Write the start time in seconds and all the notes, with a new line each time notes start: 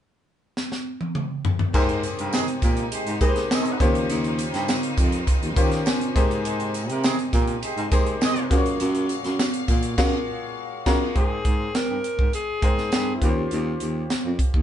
0.57 snare
0.72 snare
1.01 high tom
1.15 mid tom
1.45 floor tom
1.59 floor tom
1.74 G#2 C3 G#3 A#3 D#4 G4 G#4 C5, kick, crash, tambourine
1.89 closed hi-hat
2.03 closed hi-hat, tambourine
2.18 G2 A#3 G4 A#4, closed hi-hat
2.32 D#3 C4 G#4, snare, tambourine
2.48 closed hi-hat
2.62 A#2 A#3 G4 A#4, kick, closed hi-hat, tambourine
2.77 closed hi-hat
2.91 G#3 G4 C5, closed hi-hat, tambourine
3.06 G#2, closed hi-hat
3.20 G#3 A#3 D#4 G4 G#4 B4, kick, closed hi-hat, tambourine
3.28 C5
3.36 snare, closed hi-hat
3.50 C4 G#4 D#5, snare, tambourine
3.65 closed hi-hat
3.80 D#2 C#3 A#3 C#4 F4 G4 C5, kick, snare, closed hi-hat
3.95 closed hi-hat
4.10 D#2, closed hi-hat, tambourine
4.24 closed hi-hat
4.39 closed hi-hat, tambourine
4.53 G2, snare, closed hi-hat
4.68 snare, tambourine
4.83 closed hi-hat
4.97 F2, kick, closed hi-hat, tambourine
5.12 closed hi-hat
5.27 kick, closed hi-hat, tambourine
5.42 D#2, closed hi-hat
5.56 D#3 A#3 C#4 F4 G4 C5, kick, closed hi-hat, tambourine
5.71 snare, closed hi-hat
5.86 G#5, snare, tambourine
6.01 closed hi-hat
6.15 G#2 C3 G#3 A#3 D#4 G4 G#4 C5, kick, snare, closed hi-hat, tambourine
6.31 closed hi-hat
6.45 G#3 G4 C5, closed hi-hat, tambourine
6.60 closed hi-hat
6.74 closed hi-hat, tambourine
6.88 C3 A#3 G4 A#4, closed hi-hat
7.03 D#3 C4 G#4, snare, tambourine
7.19 closed hi-hat
7.33 A#2 A#3 G4 A#4, kick, closed hi-hat, tambourine
7.48 closed hi-hat
7.62 G#3 G4 C5, closed hi-hat, tambourine
7.77 G#2, closed hi-hat
7.91 G#3 A#3 D#4 G4 G#4 C5, kick, closed hi-hat, tambourine
8.06 closed hi-hat
8.21 C4 G#4 D#5, snare, tambourine
8.36 closed hi-hat
8.50 F#2 A#2 A#3 F4 F#4 G#4 C5 F5, kick, snare, closed hi-hat, tambourine
8.58 C#5
8.66 closed hi-hat
8.80 F#2, closed hi-hat, tambourine
8.95 closed hi-hat
9.09 closed hi-hat, tambourine
9.24 F#2, snare, closed hi-hat
9.39 snare, tambourine
9.54 closed hi-hat
9.68 A#2, kick, closed hi-hat, tambourine
9.83 closed hi-hat
9.97 F#2 A#3 F4 F#4 G#4 C#5 F5, kick, snare, crash
10.86 F#2 A#3 F4 F#4 G#4 C#5 A#5, kick, snare, crash
11.15 G#2 A#3 D#4 G#4 C5 G5, kick, closed hi-hat
11.45 G#2, kick, closed hi-hat
11.75 A#4, snare, closed hi-hat
11.89 G2
12.04 closed hi-hat
12.19 G#2, kick
12.33 G#4, closed hi-hat
12.62 G#2 A#3 D#4 G#4 C5 G5, kick, closed hi-hat
12.78 snare
12.92 G2, snare, closed hi-hat
13.16 E4
13.21 D#2 A#3 C#4 F4 G4 B4, kick, closed hi-hat
13.29 C5
13.51 D#2, closed hi-hat
13.80 D#2, closed hi-hat
14.10 snare, closed hi-hat
14.25 F2
14.39 kick, closed hi-hat
14.54 D#2, kick